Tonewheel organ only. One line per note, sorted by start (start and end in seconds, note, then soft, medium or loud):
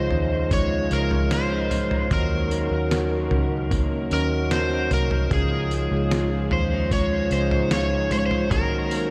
0.00 2.08 F3 medium
0.00 2.08 G#3 medium
0.00 9.10 C#4 medium
0.00 2.08 D#4 medium
0.00 2.08 F4 medium
2.11 5.28 F#3 medium
2.11 5.28 A#3 medium
2.11 9.10 D#4 medium
2.11 5.28 F#4 medium
5.31 8.48 F3 medium
5.31 8.48 G#3 medium
5.31 8.48 F4 medium
8.51 9.10 F#3 medium
8.51 9.10 A#3 medium
8.51 9.10 F#4 medium